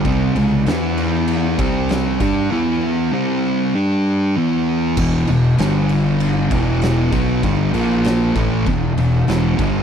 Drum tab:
CC |--------|--------|x-------|--------|
RD |xxxxxxxx|--------|-xxxxxxx|xxxxxxxx|
SD |--o---o-|--------|--o---o-|--o---o-|
BD |o----o-o|--------|o----o-o|o--oo--o|